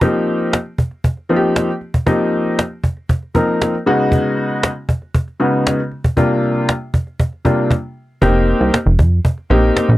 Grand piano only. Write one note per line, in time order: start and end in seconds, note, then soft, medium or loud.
0.01 0.53 F3 medium
0.01 0.53 A#3 medium
0.01 0.53 C4 medium
0.01 0.53 D#4 medium
0.01 0.53 G4 medium
1.29 1.68 F3 medium
1.29 1.68 A#3 medium
1.29 1.69 C4 medium
1.29 1.69 D#4 medium
1.29 1.36 F4 medium
1.36 1.72 G4 medium
2.06 2.58 F3 medium
2.06 2.58 A#3 medium
2.06 2.58 C4 medium
2.06 2.59 D#4 medium
2.06 2.59 G4 medium
3.34 3.73 F3 medium
3.34 3.74 A#3 medium
3.34 3.74 C4 medium
3.34 3.74 D#4 medium
3.34 3.74 A#4 medium
3.86 4.68 C#3 medium
3.86 4.68 G#3 medium
3.86 4.68 B3 medium
3.86 4.68 D#4 medium
3.86 4.69 F#4 loud
5.40 5.79 C#3 medium
5.40 5.79 G#3 medium
5.40 5.79 B3 medium
5.40 5.79 D#4 medium
5.40 5.79 F#4 medium
6.17 6.68 C3 medium
6.17 6.69 G3 medium
6.17 6.69 A#3 medium
6.17 6.69 D4 medium
6.17 6.69 F4 medium
7.45 7.70 C3 medium
7.45 7.71 G3 medium
7.45 7.71 A#3 medium
7.45 7.71 D4 medium
7.45 7.71 F4 medium
8.22 8.74 A#3 medium
8.22 8.74 C4 medium
8.22 8.74 D#4 medium
8.22 8.74 G4 loud
9.50 9.89 A#3 medium
9.50 9.89 C4 medium
9.50 9.89 D#4 medium
9.50 9.89 G4 loud